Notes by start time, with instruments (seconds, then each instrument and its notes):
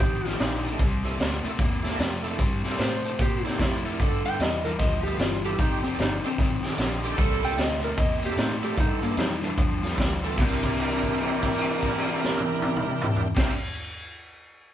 0.00 fingered electric bass A1, overdriven electric guitar F2 D#3, electric slide guitar G4, kick, closed hi-hat
0.25 overdriven electric guitar F2 D#3, tonewheel organ D#4 G4, electric slide guitar F4, snare, closed hi-hat
0.33 tonewheel organ A3 D4 D#4 G4
0.39 fingered electric bass A#1, overdriven electric guitar F2 D3, electric slide guitar D#4, snare, closed hi-hat
0.64 overdriven electric guitar F2 D3, tonewheel organ D#4 G4, closed hi-hat
0.71 tonewheel organ A3 D4 D#4 G4
0.79 fingered electric bass C2, overdriven electric guitar C3 G3, kick, snare, closed hi-hat
1.04 overdriven electric guitar C3 G3, tonewheel organ E4 A4, closed hi-hat
1.11 tonewheel organ A#3 D4 E4 A4
1.18 fingered electric bass D2, overdriven electric guitar C3 A3, snare, closed hi-hat
1.43 overdriven electric guitar C3 A3, tonewheel organ A#3 D4 E4 A4, muted fingered electric bass stroke, closed hi-hat
1.58 fingered electric bass E2, overdriven electric guitar C3 A#3, kick, closed hi-hat
1.83 overdriven electric guitar C3 A#3, tonewheel organ E4 A4, snare, closed hi-hat
1.91 tonewheel organ A#3 D4 E4 A4
1.99 fingered electric bass F2, overdriven electric guitar C3 A3, snare, closed hi-hat
2.23 overdriven electric guitar C3 A3, tonewheel organ E4 A4, closed hi-hat
2.30 tonewheel organ A#3 D4 E4 A4
2.38 fingered electric bass G2, overdriven electric guitar C3 G3, kick, closed hi-hat
2.63 overdriven electric guitar C3 G3, tonewheel organ E4 A4, snare, closed hi-hat
2.71 tonewheel organ A#3 D4 E4 A4
2.78 fingered electric bass A2, overdriven electric guitar C3 A3, electric slide guitar C5, snare, closed hi-hat
3.04 overdriven electric guitar C3 A3, tonewheel organ A#3 D4 E4 A4, closed hi-hat
3.19 fingered electric bass A#2, overdriven electric guitar C3 A#3, electric slide guitar G4, kick, closed hi-hat
3.44 overdriven electric guitar C3 A#3, electric slide guitar D#4, tonewheel organ E4 A4, snare, closed hi-hat
3.52 tonewheel organ A#3 D4 E4 A4
3.59 fingered electric bass F2, overdriven electric guitar C3 A3, electric slide guitar E4, kick, snare, closed hi-hat
3.85 overdriven electric guitar C3 A3, tonewheel organ E4 A4, closed hi-hat
3.92 tonewheel organ A#3 D4 E4 A#4
3.99 overdriven electric guitar G2 D3, fingered electric bass G2, horn section B3 E4 F4 A4, kick, closed hi-hat
4.25 overdriven electric guitar G2 D3, tonewheel organ F4 A4, electric slide guitar G5, closed hi-hat
4.32 tonewheel organ B3 E4 F4 A4
4.39 fingered electric bass E2, overdriven electric guitar G2 E3, electric slide guitar D#5, snare, closed hi-hat
4.65 overdriven electric guitar G2 E3, tonewheel organ B3 E4 F4 A4, electric slide guitar A#4, closed hi-hat
4.79 fingered electric bass D2, overdriven electric guitar G2 F3, electric slide guitar D#5, kick, snare, closed hi-hat
5.03 overdriven electric guitar G2 F3, tonewheel organ F4 A4, electric slide guitar G4, closed hi-hat
5.12 tonewheel organ B3 E4 F4 A4
5.18 fingered electric bass G1, overdriven electric guitar G2 E3, electric slide guitar F4, snare, closed hi-hat
5.44 overdriven electric guitar G2 E3, horn section B3 E4 F4 A4, tonewheel organ F4 A4, electric slide guitar G4, closed hi-hat
5.52 tonewheel organ B3 E4 F4 A4
5.58 fingered electric bass F1, overdriven electric guitar F2 C3, horn section A3 D4 D#4 G4, electric slide guitar D#4, kick, closed hi-hat
5.83 overdriven electric guitar F2 C3, electric slide guitar C4, tonewheel organ G4 A4, closed hi-hat
5.93 tonewheel organ D4 D#4 G4 A4
5.99 fingered electric bass G1, overdriven electric guitar F2 D3, electric slide guitar D#4, snare, closed hi-hat
6.24 overdriven electric guitar F2 D3, electric slide guitar C4, tonewheel organ D4 D#4 G4 A4, closed hi-hat
6.38 fingered electric bass A1, overdriven electric guitar F2 D#3, kick, snare, closed hi-hat
6.63 overdriven electric guitar F2 D#3, tonewheel organ G4 A4, muted fingered electric bass stroke, snare, closed hi-hat
6.71 tonewheel organ D4 D#4 G4 A4
6.78 fingered electric bass A#1, overdriven electric guitar F2 D3, tonewheel organ D#5, snare, closed hi-hat
7.03 overdriven electric guitar F2 D3, horn section A3 D4 D#4 G4, tonewheel organ G4 A4 G5, closed hi-hat
7.10 tonewheel organ D4 D#4 G4 A4
7.17 fingered electric bass C2, overdriven electric guitar C3 G3, horn section A#3 D4 E4 A4, kick, snare, closed hi-hat
7.42 overdriven electric guitar C3 G3, tonewheel organ E4 A4, electric slide guitar G5, closed hi-hat
7.50 tonewheel organ A#3 D4 E4 A4
7.57 fingered electric bass D2, overdriven electric guitar C3 A3, electric slide guitar D#5, snare, closed hi-hat
7.82 overdriven electric guitar C3 A3, tonewheel organ A#3 D4 E4 A4, electric slide guitar A#4, closed hi-hat
7.97 fingered electric bass E2, overdriven electric guitar C3 A#3, electric slide guitar D#5, kick, closed hi-hat
8.23 overdriven electric guitar C3 A#3, tonewheel organ E4 A4, electric slide guitar G4, closed hi-hat
8.30 tonewheel organ A#3 D4 E4 A4
8.37 fingered electric bass A2, overdriven electric guitar C3 A3, electric slide guitar D#4, snare, closed hi-hat
8.62 overdriven electric guitar C3 A3, horn section A#3 D4 E4 G4, tonewheel organ E4 A4, electric slide guitar G4, closed hi-hat
8.70 tonewheel organ A#3 D4 E4 A4
8.77 fingered electric bass G2, overdriven electric guitar G2 D3, horn section B3 E4 F4 A4, electric slide guitar D#4, kick, closed hi-hat
9.02 overdriven electric guitar G2 D3, electric slide guitar A#3, tonewheel organ F4 A4, closed hi-hat
9.11 tonewheel organ B3 E4 F4 A4
9.17 fingered electric bass F2, overdriven electric guitar G2 E3, electric slide guitar D#4, snare, closed hi-hat
9.42 overdriven electric guitar G2 E3, tonewheel organ B3 E4 F4 A4, electric slide guitar D4, closed hi-hat
9.57 fingered electric bass E2, overdriven electric guitar G2 F3, kick, closed hi-hat
9.82 overdriven electric guitar G2 F3, tonewheel organ F4 A4, snare, closed hi-hat
9.92 tonewheel organ B3 E4 F4 A4
9.97 fingered electric bass D2, overdriven electric guitar G2 E3, kick, snare, closed hi-hat
10.22 overdriven electric guitar G2 E3, horn section B3 E4 F4 A4, tonewheel organ F4 A4, closed hi-hat
10.30 tonewheel organ B3 E4 F4 A4
10.36 fingered electric bass C2, overdriven electric guitar C3 E3 A#3 D4, horn section D4 E4 A#4, tonewheel organ D4 E4 G4 A#4, kick, crash
10.41 electric slide guitar C4
10.63 kick, crash
10.78 crash
11.03 kick, crash
11.18 crash
11.43 kick, crash
11.58 crash
11.83 kick, crash
11.98 crash
12.24 snare
12.38 high tom
12.62 high tom
12.76 mid tom
13.01 mid tom
13.16 floor tom
13.35 fingered electric bass C2, overdriven electric guitar C3 E3 A#3, electric slide guitar C4, horn section D4 E4 A#4, tonewheel organ D4 E4 G4 A#4, kick, snare, crash
13.39 overdriven electric guitar D4